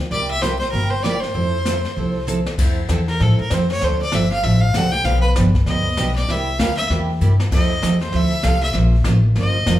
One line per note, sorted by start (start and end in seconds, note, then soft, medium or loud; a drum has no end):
0.11 0.61 C2 medium
0.11 0.32 C3 medium
0.11 0.32 G3 medium
0.11 0.32 A#3 medium
0.11 0.32 E4 medium
0.11 0.33 G4 medium
0.11 0.29 D5 medium
0.11 brush sweep soft
0.30 0.43 E5 loud
0.42 0.54 C3 medium
0.42 0.54 G3 medium
0.42 0.54 A#3 medium
0.42 0.54 E4 medium
0.42 0.54 G4 medium
0.42 0.58 C5 loud
0.42 snare medium
0.42 hi-hat pedal medium
0.59 0.71 C5 medium
0.59 snare soft
0.71 1.23 G1 medium
0.71 0.93 C3 medium
0.71 0.94 G3 medium
0.71 0.94 A#3 medium
0.71 0.94 E4 medium
0.71 0.94 G4 medium
0.71 0.92 A#4 medium
0.71 brush sweep soft
0.90 1.04 C5 medium
1.03 1.15 C3 medium
1.03 1.15 G3 medium
1.03 1.16 A#3 medium
1.03 1.16 E4 medium
1.03 1.16 G4 medium
1.03 1.22 D5 medium
1.03 snare medium
1.03 hi-hat pedal medium
1.20 2.26 C5 medium
1.20 snare soft
1.34 1.84 F2 medium
1.34 1.55 F3 soft
1.34 1.55 C4 medium
1.34 1.55 E4 medium
1.34 1.55 A4 medium
1.34 brush sweep soft
1.65 1.77 F3 medium
1.65 1.77 C4 medium
1.65 1.77 E4 medium
1.65 1.77 A4 medium
1.65 snare medium
1.65 hi-hat pedal medium
1.85 snare soft
1.96 2.46 C2 medium
1.96 2.17 F3 medium
1.96 2.17 C4 medium
1.96 2.17 E4 medium
1.96 2.18 A4 medium
1.96 brush sweep soft
2.27 2.38 F3 medium
2.27 2.38 C4 medium
2.27 2.39 E4 medium
2.27 2.39 A4 medium
2.27 hi-hat pedal medium
2.27 mid tom soft
2.46 snare medium
2.58 2.88 F2 medium
2.58 2.78 F3 medium
2.58 2.79 C4 medium
2.58 2.79 E4 medium
2.58 2.79 A4 medium
2.58 brush sweep soft
2.58 kick medium
2.58 snare soft
2.58 crash medium
2.89 3.19 E2 medium
2.89 3.00 F3 medium
2.89 3.00 C4 medium
2.89 3.01 E4 medium
2.89 3.01 A4 medium
2.89 snare medium
2.89 hi-hat pedal medium
3.08 3.24 A#4 medium
3.08 snare soft
3.20 3.38 A2 medium
3.20 3.40 F3 medium
3.20 3.41 C4 medium
3.20 3.41 E4 medium
3.20 3.41 A4 medium
3.20 3.40 A4 medium
3.20 brush sweep soft
3.20 snare soft
3.40 3.55 A#4 medium
3.40 muted upright bass stroke soft
3.50 3.81 F2 medium
3.50 3.62 F3 medium
3.50 3.62 C4 medium
3.50 3.63 E4 medium
3.50 3.63 A4 medium
3.50 3.71 C5 medium
3.50 snare medium
3.50 hi-hat pedal medium
3.70 3.86 C#5 loud
3.70 snare soft
3.81 4.12 D2 medium
3.81 4.02 D3 medium
3.81 4.02 F3 medium
3.81 4.02 C4 medium
3.81 4.02 D4 medium
3.81 4.02 A4 medium
3.81 4.01 C5 medium
3.81 brush sweep medium
3.81 snare soft
4.02 4.16 D5 medium
4.12 4.43 G1 medium
4.12 4.23 D3 medium
4.12 4.23 F3 medium
4.12 4.24 C4 medium
4.12 4.24 D4 medium
4.12 4.24 A4 medium
4.12 4.31 E5 medium
4.12 snare medium
4.12 hi-hat pedal medium
4.31 4.45 F5 loud
4.31 snare soft
4.43 4.73 A1 medium
4.43 4.63 D3 medium
4.43 4.64 F3 medium
4.43 4.64 C4 medium
4.43 4.64 D4 medium
4.43 4.64 A4 medium
4.43 4.62 E5 medium
4.43 brush sweep soft
4.43 snare soft
4.61 4.77 F5 medium
4.74 5.04 C2 medium
4.74 4.86 D3 medium
4.74 4.86 F3 medium
4.74 4.86 C4 medium
4.74 4.86 D4 medium
4.74 4.87 A4 medium
4.74 4.93 F#5 loud
4.74 snare medium
4.74 hi-hat pedal medium
4.92 5.06 G5 loud
4.92 snare soft
5.04 5.34 B1 medium
5.04 5.25 D3 medium
5.04 5.25 F3 medium
5.04 5.25 B3 medium
5.04 5.26 D4 medium
5.04 5.26 G4 medium
5.04 5.21 F5 medium
5.04 brush sweep soft
5.04 snare soft
5.21 5.29 B4 loud
5.36 5.66 G1 medium
5.36 5.47 D3 medium
5.36 5.47 F3 medium
5.36 5.47 B3 medium
5.36 5.48 D4 medium
5.36 5.47 G4 medium
5.36 snare medium
5.36 hi-hat pedal medium
5.54 kick medium
5.54 snare soft
5.66 5.97 D2 medium
5.66 5.87 D3 medium
5.66 5.87 F3 medium
5.66 5.88 B3 medium
5.66 5.87 D4 medium
5.66 5.88 G4 medium
5.66 6.13 D#5 medium
5.66 brush sweep soft
5.66 snare soft
5.97 6.27 B1 medium
5.97 6.08 D3 medium
5.97 6.09 F3 medium
5.97 6.09 B3 medium
5.97 6.09 D4 medium
5.97 6.09 G4 medium
5.97 snare medium
5.97 hi-hat pedal medium
6.16 6.32 D5 medium
6.16 snare soft
6.28 6.58 C2 medium
6.28 6.49 C3 medium
6.28 6.49 G3 medium
6.28 6.49 A#3 medium
6.28 6.49 E4 medium
6.28 6.49 G4 medium
6.28 6.61 E5 medium
6.28 brush sweep soft
6.28 snare soft
6.59 6.89 D2 medium
6.59 6.70 C3 medium
6.59 6.70 G3 medium
6.59 6.71 A#3 medium
6.59 6.71 E4 medium
6.59 6.71 G4 medium
6.59 6.76 F5 loud
6.59 snare medium
6.59 hi-hat pedal medium
6.77 6.88 E5 medium
6.77 snare soft
6.90 7.20 E2 medium
6.90 7.10 C3 medium
6.90 7.10 G3 medium
6.90 7.10 A#3 medium
6.90 7.11 E4 medium
6.90 7.11 G4 medium
6.90 brush sweep medium
6.90 snare soft
7.21 7.51 G2 medium
7.21 7.32 C3 medium
7.21 7.32 G3 medium
7.21 7.32 A#3 medium
7.21 7.32 E4 medium
7.21 7.32 G4 medium
7.21 hi-hat pedal medium
7.40 snare medium
7.51 7.82 F2 medium
7.51 7.71 F3 medium
7.51 7.72 C4 medium
7.51 7.72 E4 medium
7.51 7.72 A4 medium
7.51 7.99 D#5 medium
7.51 brush sweep medium
7.51 kick medium
7.51 snare soft
7.51 crash medium
7.82 8.13 E2 medium
7.82 7.93 F3 medium
7.82 7.93 C4 medium
7.82 7.94 E4 medium
7.82 7.94 A4 medium
7.82 snare medium
7.82 hi-hat pedal medium
8.01 8.17 C5 medium
8.01 snare soft
8.12 8.43 D2 medium
8.12 8.33 F3 medium
8.12 8.33 C4 medium
8.12 8.33 E4 medium
8.12 8.34 A4 medium
8.12 8.46 E5 medium
8.12 brush sweep medium
8.12 snare soft
8.42 8.74 C2 medium
8.42 8.54 F3 medium
8.42 8.55 C4 medium
8.42 8.55 E4 medium
8.42 8.55 A4 medium
8.42 8.62 F5 loud
8.42 snare medium
8.42 hi-hat pedal medium
8.61 8.74 E5 loud
8.61 snare soft
8.73 9.05 A#1 medium
8.73 8.94 F3 medium
8.73 8.94 A#3 medium
8.73 8.95 C#4 medium
8.73 8.95 F4 medium
8.73 8.95 C5 medium
8.73 brush sweep soft
8.73 snare soft
9.04 9.35 A1 medium
9.04 9.16 F3 medium
9.04 9.17 A#3 medium
9.04 9.16 C#4 medium
9.04 9.17 F4 medium
9.04 9.17 C5 medium
9.04 snare medium
9.04 hi-hat pedal medium
9.35 9.66 G1 medium
9.35 9.56 F3 medium
9.35 9.56 A#3 medium
9.35 9.56 C#4 medium
9.35 9.56 F4 medium
9.35 9.57 C5 medium
9.35 9.79 D#5 medium
9.35 brush sweep soft
9.35 snare soft
9.66 9.79 F1 loud
9.66 9.78 F3 medium
9.66 9.78 A#3 medium
9.66 9.78 C#4 medium
9.66 9.79 F4 medium
9.66 9.79 C5 medium
9.66 snare medium
9.66 hi-hat pedal medium